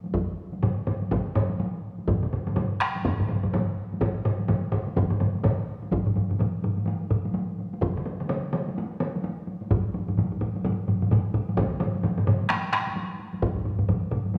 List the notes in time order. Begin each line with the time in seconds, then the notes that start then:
0.04 taiko high
0.14 taiko, taiko high
0.52 taiko high
0.63 taiko low-mid, taiko mid, taiko high
0.87 taiko low-mid, taiko mid
1.02 taiko high
1.11 taiko, taiko low-mid, taiko mid, taiko high
1.35 taiko low-mid, taiko mid, taiko high
1.50 taiko high
1.60 taiko high
1.98 taiko high
2.08 taiko, taiko low-mid, taiko mid, taiko high
2.23 taiko low-mid, taiko mid
2.33 taiko low-mid, taiko mid
2.47 taiko low-mid, taiko mid, taiko high
2.56 taiko low-mid, taiko mid, taiko high
2.81 taiko rim
2.95 taiko high
3.05 taiko, taiko low-mid, taiko mid, taiko high
3.20 taiko low-mid, taiko mid
3.29 taiko low-mid, taiko mid, taiko high
3.43 taiko low-mid, taiko mid, taiko high
3.53 taiko low-mid, taiko mid, taiko high
3.92 taiko high
4.01 taiko, taiko low-mid, taiko mid, taiko high
4.25 taiko low-mid, taiko mid
4.39 taiko high
4.48 taiko low-mid, taiko mid, taiko high
4.72 taiko low-mid, taiko mid
4.87 taiko high
4.97 taiko, taiko low-mid, taiko mid, taiko high
5.10 taiko low-mid, taiko mid
5.20 taiko low-mid, taiko mid, taiko high
5.35 taiko high
5.44 taiko low-mid, taiko mid, taiko high
5.83 taiko high
5.91 taiko, taiko low-mid, taiko high
6.07 taiko low-mid
6.15 taiko low-mid, taiko high
6.29 taiko low-mid, taiko high
6.39 taiko low-mid, taiko high
6.62 taiko low-mid, taiko high
6.77 taiko high
6.86 taiko high
7.11 taiko low-mid, taiko high
7.25 taiko high
7.34 taiko high
7.59 taiko high
7.73 taiko high
7.82 taiko, taiko mid, taiko high
7.97 taiko mid
8.06 taiko mid, taiko high
8.20 taiko mid, taiko high
8.29 taiko mid, taiko high
8.53 taiko mid, taiko high
8.68 taiko high
8.78 taiko high
9.00 taiko mid, taiko high
9.15 taiko high
9.24 taiko high
9.47 taiko high
9.61 taiko high
9.71 taiko, taiko low-mid, taiko high
9.94 taiko low-mid, taiko high
10.08 taiko low-mid, taiko high
10.17 taiko low-mid, taiko high
10.32 taiko low-mid
10.41 taiko low-mid, taiko high
10.55 taiko high
10.65 taiko low-mid, taiko high
10.88 taiko low-mid, taiko high
11.02 taiko low-mid, taiko high
11.11 taiko low-mid, taiko high
11.34 taiko low-mid, taiko high
11.49 taiko high
11.57 taiko, taiko low-mid, taiko mid, taiko high
11.80 taiko low-mid, taiko mid, taiko high
11.95 taiko high
12.03 taiko low-mid, taiko mid, taiko high
12.18 taiko low-mid, taiko mid
12.27 taiko low-mid, taiko mid, taiko high
12.41 taiko high
12.50 taiko rim, taiko high
12.73 taiko rim, taiko high
12.87 taiko high
12.96 taiko high
13.19 taiko high
13.33 taiko high
13.42 taiko, taiko low-mid, taiko high
13.56 taiko low-mid
13.65 taiko low-mid, taiko high
13.79 taiko low-mid, taiko high
13.89 taiko low-mid, taiko high
14.11 taiko low-mid, taiko high
14.25 taiko high
14.34 taiko high